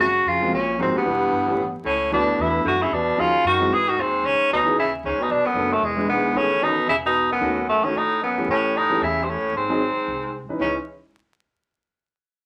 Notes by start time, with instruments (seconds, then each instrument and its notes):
0.00 upright bass F#2, baritone saxophone C#3, tenor saxophone F#4
0.25 upright bass F2, baritone saxophone C#3, tenor saxophone F4
0.41 grand piano F3 G#3 A#3 C4 F#4
0.52 upright bass A#1, baritone saxophone A#2, tenor saxophone C#4
0.78 upright bass G#1, baritone saxophone G#2, grand piano F3 G#3 A#3 C4 F#4, tenor saxophone C4
0.94 baritone saxophone G2, tenor saxophone B3, muted upright bass stroke
1.04 upright bass E1, grand piano E3 G3 B3 D4 G4
1.32 upright bass G1
1.47 grand piano E3 A3 B3 C#4 G4
1.58 upright bass A1
1.84 upright bass C#2, baritone saxophone A2, tenor saxophone C#4
2.11 upright bass D2, baritone saxophone B2, grand piano E3 A3 B3 D4 F#4, tenor saxophone D4
2.39 upright bass E2, baritone saxophone B2, tenor saxophone E4
2.65 upright bass F#2, baritone saxophone D3, tenor saxophone F#4
2.82 baritone saxophone C#3, tenor saxophone E4
2.91 upright bass E2, baritone saxophone B2, tenor saxophone D4
3.17 upright bass D#2, baritone saxophone C#3, grand piano F3 A#3 C#4 D#4 F#4, tenor saxophone F4
3.44 upright bass F#2, baritone saxophone D#3, tenor saxophone F#4
3.58 grand piano E3 G#3 C4 D#4 F#4
3.71 upright bass G#2, baritone saxophone E3, tenor saxophone G#4
3.88 baritone saxophone D#3, tenor saxophone F#4
3.97 upright bass D#2, baritone saxophone G#2, tenor saxophone C4
4.23 upright bass C#2, baritone saxophone G#2, tenor saxophone C#4
4.39 muted upright bass stroke
4.51 upright bass D2, baritone saxophone B2, tenor saxophone D#4
4.64 grand piano E3 B3 C#4 D#4 G#4
4.76 upright bass D#2, baritone saxophone C#3, tenor saxophone E4
5.03 upright bass C#2, baritone saxophone G#2, tenor saxophone C#4
5.18 baritone saxophone B2, muted upright bass stroke
5.22 tenor saxophone D#4
5.29 upright bass B1, baritone saxophone B2, tenor saxophone D4
5.44 baritone saxophone F#2, tenor saxophone B3, muted upright bass stroke
5.54 upright bass F#1, grand piano F#3 A3 B3 D4 A4
5.73 baritone saxophone F#2, tenor saxophone A3
5.81 upright bass E1, baritone saxophone E2, tenor saxophone G#3
5.97 grand piano E3 G#3 B3 D4 E4
6.08 upright bass B1, baritone saxophone G#2, tenor saxophone B3
6.34 upright bass A1, baritone saxophone A2, grand piano D#3 B3 C#4 G#4, tenor saxophone C#4
6.62 baritone saxophone B2, grand piano D#3 B3 C#4 A4, tenor saxophone D#4
6.88 upright bass E1, baritone saxophone C#3, tenor saxophone E4
7.06 baritone saxophone B2, tenor saxophone D#4
7.32 baritone saxophone F#2, tenor saxophone B3
7.41 upright bass D#2, grand piano D#3 A3 C#4 F#4
7.69 baritone saxophone F#2, tenor saxophone A3
7.83 baritone saxophone A2, grand piano D#3 A3 C#4 F#4, tenor saxophone C#4, muted upright bass stroke
7.96 upright bass A2, baritone saxophone A2, tenor saxophone D#4
8.22 baritone saxophone F#2, tenor saxophone B3
8.37 grand piano E3 A3 C#4 G4, muted upright bass stroke
8.48 upright bass A2, baritone saxophone A2, tenor saxophone C#4
8.76 baritone saxophone A2, tenor saxophone D#4
8.89 grand piano E3 A3 C#4 G4, muted upright bass stroke
9.01 upright bass E2, baritone saxophone C#3, tenor saxophone E4
9.23 baritone saxophone G2, tenor saxophone C4
9.29 baritone saxophone A2, tenor saxophone C#4
9.42 upright bass D#2
9.54 upright bass G#1, baritone saxophone G#2, tenor saxophone C4
9.68 grand piano F#3 C4 D#4 G#4
9.96 muted upright bass stroke
10.07 upright bass C2
10.49 grand piano E3 C#4 D#4 B4, muted upright bass stroke
10.59 upright bass C#2, baritone saxophone G#2, grand piano E3 C#4 D#4 B4, tenor saxophone C#4